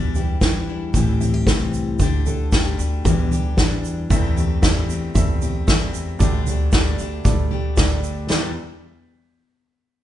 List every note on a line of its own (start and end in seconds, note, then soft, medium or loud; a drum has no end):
0.00 0.15 E2 medium
0.00 0.38 E2 medium
0.00 0.16 B2 medium
0.00 0.16 E3 medium
0.00 0.16 G3 medium
0.00 0.16 D4 medium
0.00 0.14 E4 medium
0.15 0.40 E3 soft
0.15 0.41 G3 soft
0.15 0.42 D4 soft
0.15 0.42 E4 soft
0.15 0.97 G4 medium
0.15 floor tom medium
0.15 shaker medium
0.41 0.90 E2 medium
0.41 0.68 E3 medium
0.41 0.69 G3 medium
0.41 0.68 D4 medium
0.41 0.66 E4 medium
0.41 kick medium
0.41 snare loud
0.41 shaker medium
0.67 0.94 E3 soft
0.67 0.94 G3 soft
0.67 0.95 D4 soft
0.67 0.94 E4 soft
0.94 1.43 A1 medium
0.94 1.21 A2 medium
0.94 1.21 E3 medium
0.94 1.21 G3 medium
0.94 1.21 C4 medium
0.94 1.19 G4 medium
0.94 kick loud
0.94 floor tom loud
0.94 shaker medium
1.20 1.47 G3 soft
1.20 1.48 C4 medium
1.20 1.34 E4 soft
1.20 1.47 G4 medium
1.20 floor tom medium
1.20 shaker medium
1.34 2.00 G4 soft
1.46 1.96 C2 medium
1.46 1.99 E3 medium
1.46 2.00 G3 medium
1.46 2.01 C4 medium
1.46 2.01 G4 medium
1.46 kick loud
1.46 snare loud
1.46 shaker medium
1.74 shaker medium
1.99 2.49 D2 medium
1.99 2.26 D3 medium
1.99 2.27 A3 medium
1.99 2.26 D4 medium
1.99 2.25 G4 medium
1.99 kick medium
1.99 floor tom loud
1.99 shaker medium
2.26 2.52 A3 soft
2.26 2.53 D4 soft
2.26 2.53 G4 medium
2.26 2.53 A4 medium
2.26 floor tom medium
2.26 shaker medium
2.52 2.77 D2 medium
2.52 2.79 D3 medium
2.52 5.16 G3 medium
2.52 2.80 A3 medium
2.52 2.78 D4 medium
2.52 2.77 G4 medium
2.52 kick loud
2.52 snare loud
2.52 shaker medium
2.78 3.03 D2 medium
2.78 3.06 A3 soft
2.78 3.05 D4 soft
2.78 3.05 G4 medium
2.78 shaker medium
3.05 3.31 E2 medium
3.05 3.29 E2 medium
3.05 3.32 B2 medium
3.05 3.32 E3 medium
3.05 3.32 G3 medium
3.05 3.32 D4 medium
3.05 3.30 G4 medium
3.05 kick loud
3.05 floor tom medium
3.05 shaker medium
3.31 3.56 E3 soft
3.31 3.58 G3 soft
3.31 3.59 D4 medium
3.31 3.58 G4 medium
3.31 floor tom medium
3.31 shaker medium
3.57 4.07 E2 medium
3.57 4.09 E3 medium
3.57 4.11 G3 medium
3.57 4.11 D4 medium
3.57 4.13 G4 medium
3.57 kick medium
3.57 snare loud
3.57 shaker medium
3.85 shaker medium
4.10 6.17 E2 medium
4.10 4.59 E2 loud
4.10 6.17 E3 medium
4.10 4.37 E3 medium
4.10 4.60 G3 medium
4.10 4.37 A3 medium
4.10 4.60 C4 medium
4.10 4.37 C4 medium
4.10 4.36 G4 loud
4.10 4.60 A4 medium
4.10 4.60 E5 medium
4.10 kick medium
4.10 floor tom loud
4.10 shaker medium
4.37 4.62 A3 soft
4.37 4.63 C4 soft
4.37 4.63 G4 medium
4.37 floor tom medium
4.37 shaker medium
4.62 5.12 E2 medium
4.62 4.89 E3 medium
4.62 5.12 G3 medium
4.62 4.90 A3 medium
4.62 5.12 C4 medium
4.62 4.89 C4 medium
4.62 4.88 G4 medium
4.62 5.12 A4 medium
4.62 5.12 E5 medium
4.62 kick loud
4.62 snare loud
4.62 shaker medium
4.89 5.43 A3 soft
4.89 5.42 C4 soft
4.89 5.41 G4 medium
4.89 shaker medium
5.15 5.64 E2 loud
5.15 5.65 G3 medium
5.15 5.65 C4 medium
5.15 5.65 A4 medium
5.15 5.65 E5 medium
5.15 kick loud
5.15 floor tom loud
5.15 shaker medium
5.41 5.68 A3 soft
5.41 5.69 C4 medium
5.41 5.68 G4 medium
5.41 floor tom medium
5.41 shaker medium
5.67 6.16 E2 medium
5.67 6.20 E3 medium
5.67 6.17 G3 medium
5.67 6.20 A3 medium
5.67 6.17 C4 medium
5.67 6.21 C4 medium
5.67 6.22 G4 medium
5.67 6.17 A4 medium
5.67 6.17 E5 medium
5.67 kick loud
5.67 snare loud
5.67 shaker loud
5.94 shaker medium
6.19 8.26 D2 medium
6.19 6.69 D2 loud
6.19 8.26 D3 medium
6.19 6.47 D3 medium
6.19 6.69 G3 medium
6.19 6.47 A3 medium
6.19 6.69 D4 medium
6.19 6.47 D4 medium
6.19 6.46 G4 medium
6.19 6.69 A4 medium
6.19 6.69 D5 loud
6.19 kick loud
6.19 floor tom loud
6.19 shaker medium
6.46 6.73 A3 soft
6.46 6.74 D4 medium
6.46 6.73 G4 medium
6.46 floor tom medium
6.46 shaker medium
6.72 6.97 D2 medium
6.72 6.99 D3 medium
6.72 7.23 G3 medium
6.72 7.00 A3 medium
6.72 7.23 D4 medium
6.72 6.99 D4 medium
6.72 6.97 G4 medium
6.72 7.23 A4 medium
6.72 7.22 D5 medium
6.72 kick loud
6.72 snare loud
6.72 shaker medium
6.99 7.23 D2 medium
6.99 7.53 A3 soft
6.99 7.52 D4 medium
6.99 7.50 G4 medium
6.99 shaker medium
7.25 7.49 D2 medium
7.25 7.75 G3 medium
7.25 7.74 D4 medium
7.25 7.74 A4 medium
7.25 7.74 D5 medium
7.25 kick loud
7.25 floor tom loud
7.25 shaker medium
7.51 7.77 A3 medium
7.51 7.78 D4 medium
7.51 7.77 G4 medium
7.51 floor tom medium
7.77 8.26 D2 medium
7.77 8.30 D3 medium
7.77 8.27 G3 medium
7.77 8.31 A3 medium
7.77 8.27 D4 medium
7.77 8.30 D4 medium
7.77 8.31 G4 medium
7.77 8.27 A4 medium
7.77 8.27 D5 medium
7.77 kick loud
7.77 snare loud
7.77 shaker medium
8.04 shaker medium
8.29 8.51 E2 medium
8.29 8.54 E2 medium
8.29 8.55 E2 medium
8.29 8.51 B2 medium
8.29 8.51 E3 medium
8.29 8.54 G3 medium
8.29 8.52 G3 medium
8.29 8.52 D4 medium
8.29 8.54 E4 medium
8.29 8.52 G4 medium
8.29 8.54 B4 medium
8.29 8.55 D5 medium
8.29 snare medium
8.29 shaker medium